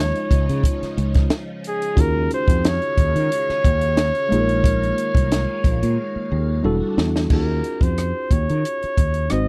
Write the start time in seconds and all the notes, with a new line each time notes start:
Already playing: D#2 C#3 F3 G#3 C#4 D#4 F4 C#5
0.16 closed hi-hat
0.31 C#2, kick, closed hi-hat
0.49 C#3, closed hi-hat
0.64 kick, closed hi-hat
0.82 muted fretless electric bass stroke, snare, closed hi-hat
0.97 C#2, closed hi-hat
1.14 kick, snare, closed hi-hat
1.30 snare, closed hi-hat
1.64 G#4, closed hi-hat
1.82 closed hi-hat
1.96 D#2 D#3 G#3 C#4 D#4 F4 F#4 F5, kick, closed hi-hat
2.00 G#4 A#4
2.31 C5, closed hi-hat
2.48 F2, kick, closed hi-hat
2.65 C#5, snare, closed hi-hat
2.82 closed hi-hat
2.97 D#2, kick, closed hi-hat
3.15 D#3, closed hi-hat
3.32 closed hi-hat
3.49 muted fretless electric bass stroke, snare
3.64 D#2, kick, closed hi-hat
3.81 closed hi-hat
3.97 snare, closed hi-hat
4.15 closed hi-hat
4.29 A#1 D#3 G#3 A#3 D#4, closed hi-hat
4.33 F4 G#4
4.40 A#4
4.49 closed hi-hat
4.64 kick, closed hi-hat
4.83 closed hi-hat
4.98 closed hi-hat
5.15 C2, kick, closed hi-hat
5.32 snare, closed hi-hat
5.64 A#1, kick, closed hi-hat
5.83 A#2, closed hi-hat
6.16 muted fretless electric bass stroke
6.31 D#2
6.63 E1 D3 G3 A3 D4 E4 F#4 A4
6.97 E2, snare
7.16 snare
7.29 D#2 F3 C#4 D#4 F4 A#4, kick, crash
7.34 F#4 G#4
7.64 closed hi-hat
7.81 F2 C5, kick, closed hi-hat
7.98 cross-stick, closed hi-hat
8.31 D#2 C#5, kick, closed hi-hat
8.50 D#3, closed hi-hat
8.65 closed hi-hat
8.83 muted fretless electric bass stroke, closed hi-hat
8.97 D#2, kick, closed hi-hat
9.14 closed hi-hat
9.30 G#1 G#3 C4 D#4 F#4 C5 D#5, cross-stick, closed hi-hat